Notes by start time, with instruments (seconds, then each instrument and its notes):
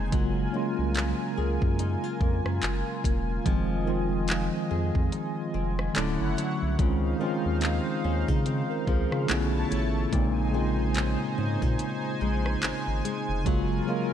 Already playing: sub bass F1, nylon-string guitar A#2 G#3 C#4 D#4, analog synth pad G#5
0.11 sub bass F#1, tine electric piano C#3 F#3 G#3 A#3 F4, nylon-string guitar F#3, analog synth pad F4 A#4, kick, closed hi-hat
0.52 tine electric piano F#3 G#3 A#3 C#4 F4, nylon-string guitar A#3
0.79 sub bass C2
0.95 nylon-string guitar F4, clap, closed hi-hat
1.37 sub bass C#2, nylon-string guitar G#4
1.62 sub bass F#2, kick
1.79 nylon-string guitar D#4, closed hi-hat
2.04 nylon-string guitar F4
2.21 sub bass F2, nylon-string guitar A#3, kick
2.46 sub bass F#2, cross-stick
2.62 sub bass F#1, nylon-string guitar F4, clap, closed hi-hat
3.04 sub bass E1, nylon-string guitar A#3, kick, closed hi-hat
3.44 sub bass F1, tine electric piano D#3 F3 G#3 C4 F4, nylon-string guitar F3, analog synth pad D#5, kick, closed hi-hat
3.86 tine electric piano D#3 F3 G#3 C4, nylon-string guitar C4
3.90 tine electric piano F4
4.28 nylon-string guitar D#4, clap, closed hi-hat
4.71 sub bass F2, nylon-string guitar G#4
4.95 sub bass F2, kick
5.12 nylon-string guitar D#4, closed hi-hat
5.54 sub bass F1, nylon-string guitar C4
5.79 cross-stick
5.94 sub bass D1, tine electric piano D3 F#3 A3 C#4, nylon-string guitar D3, analog synth pad E4 C#5 F#5, clap, closed hi-hat
5.98 tine electric piano E4
6.21 sub bass F#1
6.37 nylon-string guitar F#3, closed hi-hat
6.62 sub bass C2
6.77 sub bass C#2, nylon-string guitar C#3, tine electric piano D#3 G#3 C4 C#4, analog synth pad D#4 C5 F5, kick, closed hi-hat
6.81 tine electric piano F4
7.19 tine electric piano D#3 G#3 C4 C#4, nylon-string guitar F3
7.23 tine electric piano F4
7.46 sub bass D#2
7.61 nylon-string guitar C4, clap, closed hi-hat
8.04 sub bass D#2, nylon-string guitar C#4
8.28 sub bass C#3, nylon-string guitar D#4, kick
8.46 nylon-string guitar C4, closed hi-hat
8.70 tine electric piano A#4
8.87 sub bass C#2, nylon-string guitar F3, tine electric piano G#4 C5, kick
9.12 sub bass C#3, tine electric piano F4 G#4, cross-stick
9.27 sub bass B1, nylon-string guitar B2, tine electric piano D3 A3 B3 C#4 E4, analog synth pad E4 C#5 A5, clap, closed hi-hat
9.71 sub bass A1, nylon-string guitar A3, closed hi-hat
10.11 sub bass A#1, nylon-string guitar A#2, tine electric piano C#3 G#3 A#3 C4, analog synth pad D#4 C5 G#5, kick, closed hi-hat
10.15 tine electric piano D#4
10.52 tine electric piano C#3 G#3 A#3 C4 F4, nylon-string guitar G#3
10.94 nylon-string guitar C#4, clap, closed hi-hat
11.38 sub bass G#2, nylon-string guitar C#4
11.62 sub bass A#2, nylon-string guitar D#4, kick
11.79 nylon-string guitar C#4, closed hi-hat
12.21 sub bass A#1, nylon-string guitar G#3
12.46 cross-stick
12.63 sub bass G#1, nylon-string guitar C#4, clap, closed hi-hat
12.87 sub bass G#1
13.05 nylon-string guitar G#3, closed hi-hat
13.29 sub bass F1
13.44 sub bass F#1, tine electric piano C#3 F#3 G#3 A#3 F4, nylon-string guitar F#3, analog synth pad F4 A#4, kick, closed hi-hat
13.86 tine electric piano C#3 F#3 G#3 A#3 F4, nylon-string guitar A#3